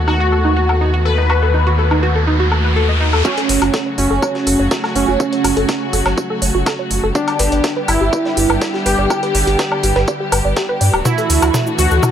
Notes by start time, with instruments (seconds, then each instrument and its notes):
Already playing: detuned saw bass D#2, string section D#3 A3 B3 F#4, riser
0.08 synth arpeggio sound D#4, analog polysynth F#4, low woodblock
0.20 synth arpeggio sound F#4
0.32 synth arpeggio sound A4
0.45 synth arpeggio sound D#4
0.57 synth arpeggio sound F#4
0.69 synth arpeggio sound A4, low woodblock
0.81 synth arpeggio sound D#4
0.94 synth arpeggio sound F#4
1.05 synth arpeggio sound A4, analog polysynth B4
1.18 synth arpeggio sound D#4
1.30 synth arpeggio sound F#4, low woodblock
1.42 synth arpeggio sound A4
1.54 synth arpeggio sound D#4
1.67 synth arpeggio sound F#4
1.79 synth arpeggio sound A4
1.91 synth arpeggio sound D#4, low woodblock
2.03 synth arpeggio sound F#4
2.15 synth arpeggio sound A4
2.27 synth arpeggio sound D#4
2.40 synth arpeggio sound F#4
2.52 synth arpeggio sound A4, low woodblock
2.64 synth arpeggio sound B4
2.76 synth arpeggio sound A4
2.89 synth arpeggio sound D#5
3.01 synth arpeggio sound D#4
3.13 synth arpeggio sound A4, low woodblock
3.25 string section C#3 F#3 A3 F#4, analog polysynth C#4, synth arpeggio sound F#4, kick, tambourine
3.37 synth arpeggio sound A4, closed hi-hat
3.49 detuned saw bass F#1, synth arpeggio sound C#5, snare, open hi-hat, tambourine
3.62 detuned saw bass F#1, synth arpeggio sound F#4, closed hi-hat, low woodblock
3.74 synth arpeggio sound A4, kick, snare, tambourine
3.86 synth arpeggio sound C#5
3.98 detuned saw bass F#1, analog polysynth C#4, synth arpeggio sound F#4, open hi-hat, tambourine
4.11 detuned saw bass F#1, synth arpeggio sound A4
4.22 synth arpeggio sound C#5, kick, tambourine, low woodblock
4.35 synth arpeggio sound F#4, snare
4.47 detuned saw bass F#1, synth arpeggio sound A4, open hi-hat, tambourine
4.59 detuned saw bass F#1, synth arpeggio sound C#5
4.71 synth arpeggio sound F#4, kick, snare, tambourine
4.84 synth arpeggio sound A4, snare, low woodblock
4.96 detuned saw bass F#1, analog polysynth C#4, synth arpeggio sound C#5, open hi-hat, tambourine
5.08 detuned saw bass F#1, synth arpeggio sound F#4
5.20 synth arpeggio sound A4, kick, tambourine
5.33 synth arpeggio sound C#5, closed hi-hat
5.44 detuned saw bass F#1, synth arpeggio sound F#4, snare, open hi-hat, tambourine, low woodblock
5.57 detuned saw bass F#1, synth arpeggio sound A4, closed hi-hat
5.69 synth arpeggio sound C#5, kick, snare, tambourine
5.81 synth arpeggio sound F#4
5.93 detuned saw bass F#1, synth arpeggio sound A4, open hi-hat, tambourine
6.06 detuned saw bass F#1, synth arpeggio sound C#5, snare, low woodblock
6.18 synth arpeggio sound F#4, kick, tambourine
6.30 synth arpeggio sound A4
6.42 detuned saw bass F#1, synth arpeggio sound C#5, open hi-hat, tambourine
6.55 detuned saw bass F#1, synth arpeggio sound F#4
6.66 synth arpeggio sound A4, kick, snare, tambourine, low woodblock
6.79 synth arpeggio sound C#5
6.91 detuned saw bass F#1, synth arpeggio sound F#4, open hi-hat, tambourine
7.03 detuned saw bass F#1, synth arpeggio sound A4
7.15 string section D3 G3 B3 G4, analog polysynth D4, synth arpeggio sound D5, kick, tambourine
7.28 synth arpeggio sound G4, closed hi-hat, low woodblock
7.39 detuned saw bass G1, synth arpeggio sound B4, snare, open hi-hat, tambourine
7.52 detuned saw bass G1, synth arpeggio sound D5, closed hi-hat
7.64 synth arpeggio sound G4, kick, snare, tambourine
7.77 synth arpeggio sound B4
7.88 detuned saw bass G1, analog polysynth E4, synth arpeggio sound D5, open hi-hat, tambourine, low woodblock
8.01 detuned saw bass G1, synth arpeggio sound G4
8.13 synth arpeggio sound B4, kick, tambourine
8.25 synth arpeggio sound D5, snare
8.37 detuned saw bass G1, synth arpeggio sound G4, open hi-hat, tambourine
8.50 detuned saw bass G1, synth arpeggio sound B4, low woodblock
8.61 synth arpeggio sound D5, kick, snare, tambourine
8.74 synth arpeggio sound G4, snare
8.86 detuned saw bass G1, analog polysynth G4, synth arpeggio sound B4, open hi-hat, tambourine
8.99 detuned saw bass G1, synth arpeggio sound D5
9.10 synth arpeggio sound G4, kick, tambourine, low woodblock
9.23 synth arpeggio sound B4, closed hi-hat
9.35 detuned saw bass G1, synth arpeggio sound D5, snare, open hi-hat, tambourine
9.47 detuned saw bass G1, synth arpeggio sound G4, closed hi-hat
9.59 synth arpeggio sound B4, kick, snare, tambourine
9.72 synth arpeggio sound D5, low woodblock
9.83 detuned saw bass G1, synth arpeggio sound G4, open hi-hat, tambourine
9.96 detuned saw bass G1, synth arpeggio sound B4, snare
10.08 synth arpeggio sound D5, kick, tambourine
10.20 synth arpeggio sound G4
10.32 detuned saw bass G1, synth arpeggio sound B4, open hi-hat, tambourine, low woodblock
10.45 detuned saw bass G1, synth arpeggio sound D5
10.56 synth arpeggio sound G4, kick, snare, tambourine
10.69 synth arpeggio sound B4
10.81 detuned saw bass G2, synth arpeggio sound D5, open hi-hat, tambourine
10.94 detuned saw bass D1, synth arpeggio sound G4, low woodblock
11.05 string section E3 A3 D4 F#4, analog polysynth E4, synth arpeggio sound F#4, kick, mid tom, tambourine, riser, shaker
11.18 synth arpeggio sound A4, closed hi-hat, shaker
11.30 detuned saw bass D2, synth arpeggio sound E4, snare, open hi-hat, tambourine, shaker
11.42 detuned saw bass D2, synth arpeggio sound F#4, closed hi-hat, low woodblock, shaker
11.54 synth arpeggio sound A4, kick, snare, mid tom, tambourine, shaker
11.67 synth arpeggio sound E4, shaker
11.78 detuned saw bass D2, synth arpeggio sound F#4, analog polysynth F#4, open hi-hat, tambourine, shaker
11.91 detuned saw bass D2, synth arpeggio sound A4, shaker
12.03 synth arpeggio sound E4, kick, mid tom, tambourine, low woodblock, shaker